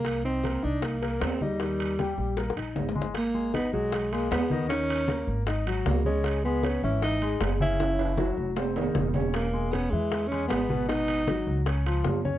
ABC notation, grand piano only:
X:1
M:4/4
L:1/8
Q:1/4=155
K:Eb
V:1 name="Grand piano"
[B,B] [Ee] [B,B] [Ee]2 [B,B]2 [Ee] | [E,E]2 [G,G]2 [B,B] [Ee]2 [A,A] | [K:G#m] z [G,G] [Dd] [F,F]2 [G,G]2 [D,D] | [D,D]2 [A,A]2 [Dd] [F,F]2 [Cc]- |
[Cc] [G,G] [Cc] [E,E]2 [G,G]2 [C,C] | [C,C]2 [F,F]2 [=C=c] [D,D]2 [^C^c]- | [Cc] [G,G] [Cc] [E,E]2 [G,G]2 [B,,B,] | [B,,B,]2 [F,F]2 [Cc] [^E,^E]2 [Cc] |]